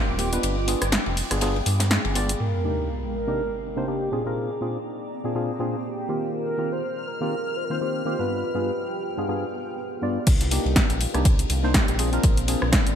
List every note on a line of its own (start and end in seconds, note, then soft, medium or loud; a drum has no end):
0.00 0.15 A#3 medium
0.00 0.15 C4 medium
0.00 0.43 C4 medium
0.00 0.16 F4 medium
0.00 0.41 F4 medium
0.00 1.23 F4 medium
0.00 0.16 G4 medium
0.00 0.41 D#5 medium
0.00 0.43 D#5 medium
0.00 0.41 G5 medium
0.00 0.39 C6 medium
0.00 2.41 D6 medium
0.08 0.38 D#1 medium
0.18 0.29 A#3 medium
0.18 0.29 C4 medium
0.18 0.29 F4 medium
0.18 0.30 G4 loud
0.18 open hi-hat loud
0.18 ride medium
0.32 0.56 B3 medium
0.32 0.57 D4 medium
0.32 0.57 F4 medium
0.32 0.57 B4 medium
0.32 closed hi-hat medium
0.43 0.75 G1 loud
0.43 2.40 B3 medium
0.43 2.38 F5 medium
0.43 2.38 G5 medium
0.43 2.38 G#5 medium
0.43 2.38 B5 medium
0.43 closed hi-hat medium
0.43 ride medium
0.67 0.84 B3 medium
0.67 0.84 D4 medium
0.67 0.84 F4 medium
0.67 0.84 G#4 medium
0.67 open hi-hat loud
0.67 ride medium
0.82 0.98 G1 medium
0.82 3.10 F5 medium
0.82 cross-stick medium
0.82 closed hi-hat medium
0.92 snare loud
0.92 closed hi-hat medium
0.92 ride medium
1.06 1.23 F1 medium
1.06 ride soft
1.17 open hi-hat loud
1.17 open hi-hat medium
1.30 1.61 G1 medium
1.30 1.40 B3 medium
1.30 1.40 D4 medium
1.30 1.40 F4 medium
1.30 1.40 G#4 medium
1.30 cross-stick medium
1.30 closed hi-hat medium
1.41 1.58 B3 loud
1.41 1.58 D4 medium
1.41 1.58 F4 medium
1.41 1.58 G#4 loud
1.41 snare loud
1.41 closed hi-hat medium
1.41 ride medium
1.56 ride soft
1.66 1.98 G2 loud
1.66 open hi-hat loud
1.66 ride medium
1.80 snare loud
1.80 snare soft
1.80 closed hi-hat medium
1.80 ride medium
1.91 2.41 G#4 loud
1.91 snare loud
1.91 closed hi-hat medium
1.91 ride soft
2.05 2.35 G1 loud
2.05 ride medium
2.15 2.31 B3 medium
2.15 2.32 D4 medium
2.15 2.32 F4 medium
2.15 2.32 D5 loud
2.15 snare medium
2.15 open hi-hat loud
2.15 ride medium
2.29 closed hi-hat medium
2.40 8.30 C4 medium
2.40 4.11 C4 medium
2.40 3.13 A#4 loud
2.40 4.11 A#4 medium
2.40 6.05 D5 medium
2.40 4.11 D#5 medium
2.40 crash medium
2.40 sub drop medium
2.61 2.88 C3 medium
2.61 2.89 A#3 medium
2.61 2.89 D4 medium
2.61 6.09 D6 medium
2.65 2.89 D#4 medium
2.65 2.89 G4 medium
3.14 3.78 A#4 loud
3.14 6.99 A#5 medium
3.27 3.41 C3 medium
3.27 3.41 A#3 medium
3.27 3.42 D4 medium
3.27 3.42 D#4 medium
3.27 3.42 G4 loud
3.76 3.86 C3 medium
3.76 3.86 A#3 medium
3.76 3.86 D4 medium
3.76 3.86 D#4 medium
3.76 3.87 G4 medium
3.76 3.86 C5 loud
3.87 4.09 C3 medium
3.87 4.09 A#3 medium
3.87 4.09 D4 medium
3.87 4.09 D#4 medium
3.87 4.14 G4 medium
3.87 4.09 G4 medium
4.12 4.22 A#2 medium
4.12 6.07 A#3 medium
4.12 4.23 C4 medium
4.12 4.23 D4 medium
4.12 4.23 F4 medium
4.12 6.07 G#4 medium
4.12 5.11 G#4 loud
4.12 4.23 G#4 medium
4.12 8.26 C5 medium
4.26 4.50 A#2 medium
4.26 4.50 C4 medium
4.26 4.50 D4 medium
4.26 4.50 F4 medium
4.26 4.50 A#4 medium
4.36 6.09 G#4 medium
4.61 4.77 A#2 medium
4.61 4.78 C4 medium
4.61 4.78 D4 medium
4.61 4.78 F4 medium
4.61 4.78 G#4 medium
5.24 5.33 A#2 medium
5.24 5.33 C4 medium
5.24 5.34 D4 medium
5.24 5.34 F4 medium
5.24 5.34 G#4 medium
5.35 5.51 A#2 loud
5.35 5.51 C4 medium
5.35 5.51 D4 medium
5.35 5.52 F4 medium
5.35 5.52 G#4 loud
5.59 5.76 A#2 loud
5.59 5.76 C4 medium
5.59 5.76 D4 medium
5.59 5.76 F4 medium
5.59 5.76 G#4 loud
5.85 6.30 G4 loud
6.09 6.55 D#3 medium
6.09 6.55 A#3 medium
6.09 6.56 C4 medium
6.09 8.28 F4 medium
6.09 6.56 F4 medium
6.09 10.23 G4 medium
6.09 6.56 G4 medium
6.09 8.28 D#5 medium
6.15 9.09 F4 medium
6.33 6.74 A#4 loud
6.33 10.28 F6 medium
6.45 8.30 D#5 medium
6.58 6.82 D#3 medium
6.58 6.82 A#3 medium
6.58 6.82 C4 medium
6.58 6.82 F4 medium
6.58 6.83 G4 medium
6.72 7.09 C5 loud
6.98 10.96 G5 medium
7.08 7.58 A#4 loud
7.21 7.35 D#3 medium
7.21 7.35 A#3 medium
7.21 7.35 C4 medium
7.21 7.35 F4 medium
7.21 7.35 G4 loud
7.57 7.66 C5 loud
7.65 7.73 A#4 medium
7.70 7.79 D#3 medium
7.70 7.79 A#3 medium
7.70 7.80 C4 medium
7.70 7.80 F4 medium
7.70 7.80 C5 loud
7.70 8.05 C5 loud
7.81 8.02 D#3 medium
7.81 8.02 A#3 medium
7.81 8.03 C4 medium
7.81 8.03 F4 medium
7.81 8.03 G4 medium
8.05 8.16 D#3 medium
8.05 8.16 A#3 medium
8.05 8.16 C4 medium
8.05 8.16 F4 medium
8.05 8.17 G4 medium
8.05 8.21 C5 loud
8.19 8.43 G2 medium
8.19 8.43 B3 medium
8.19 8.44 D4 medium
8.19 8.44 F4 medium
8.19 9.78 B4 loud
8.19 8.44 B4 medium
8.30 10.27 B3 medium
8.30 10.25 F4 medium
8.30 10.25 G#4 medium
8.30 10.25 B4 medium
8.54 8.71 G2 medium
8.54 8.71 B3 medium
8.54 8.71 D4 medium
8.54 8.71 F4 medium
8.54 8.71 G#4 medium
9.17 9.27 G2 medium
9.17 9.27 B3 medium
9.17 9.27 D4 medium
9.17 9.27 F4 medium
9.17 9.27 G#4 medium
9.17 10.96 F5 medium
9.28 9.45 G2 loud
9.28 9.45 B3 medium
9.28 9.45 D4 medium
9.28 9.45 F4 medium
9.28 9.45 G#4 loud
10.02 10.18 G2 medium
10.02 10.18 B3 medium
10.02 10.19 D4 medium
10.02 10.19 F4 medium
10.02 10.19 D5 loud
10.27 10.59 C2 loud
10.27 12.95 A#3 medium
10.27 12.95 C4 medium
10.27 11.97 D4 medium
10.27 11.97 D#4 medium
10.27 12.95 C5 medium
10.27 kick loud
10.27 closed hi-hat medium
10.27 crash loud
10.27 ride medium
10.41 snare soft
10.41 closed hi-hat medium
10.51 10.75 A#3 medium
10.51 10.76 D4 medium
10.51 10.76 D#4 medium
10.51 10.76 G4 medium
10.51 open hi-hat loud
10.51 ride medium
10.65 10.82 C2 medium
10.65 ride soft
10.76 kick loud
10.76 snare loud
10.76 closed hi-hat medium
10.76 ride medium
10.90 11.07 A#1 medium
10.90 closed hi-hat medium
10.90 ride soft
11.01 open hi-hat loud
11.01 ride medium
11.05 12.95 D5 medium
11.05 12.95 A#5 medium
11.14 11.45 C2 medium
11.14 11.28 A#3 medium
11.14 11.28 D4 medium
11.14 11.28 D#4 medium
11.14 11.29 G4 loud
11.14 cross-stick medium
11.14 closed hi-hat soft
11.25 kick loud
11.25 closed hi-hat medium
11.25 ride medium
11.39 closed hi-hat medium
11.39 ride soft
11.50 11.82 C2 medium
11.50 open hi-hat loud
11.50 ride medium
11.63 11.73 A#3 medium
11.63 11.73 D4 medium
11.63 11.73 D#4 medium
11.63 11.73 C5 loud
11.63 snare soft
11.74 11.96 A#3 medium
11.74 11.96 G4 medium
11.74 kick loud
11.74 snare loud
11.74 closed hi-hat medium
11.74 ride loud
11.88 12.19 A#1 medium
11.88 closed hi-hat medium
11.99 12.09 C4 medium
11.99 12.10 D4 medium
11.99 12.95 D4 medium
11.99 12.10 F4 medium
11.99 12.95 G#4 medium
11.99 12.10 G#4 loud
11.99 open hi-hat loud
11.99 ride medium
12.12 12.37 C4 medium
12.12 12.37 D4 medium
12.12 12.37 F4 medium
12.12 12.37 A#4 medium
12.12 closed hi-hat soft
12.21 12.56 A#1 loud
12.21 12.95 G#4 medium
12.21 kick loud
12.21 closed hi-hat medium
12.21 ride medium
12.37 closed hi-hat medium
12.48 12.64 C4 medium
12.48 12.64 D4 medium
12.48 12.65 F4 medium
12.48 12.65 G#4 medium
12.48 open hi-hat loud
12.48 ride medium
12.62 12.79 A#1 loud
12.62 cross-stick medium
12.72 kick loud
12.72 snare loud
12.72 closed hi-hat medium
12.72 ride medium
12.87 12.95 G#1 medium
12.87 closed hi-hat medium
12.87 ride soft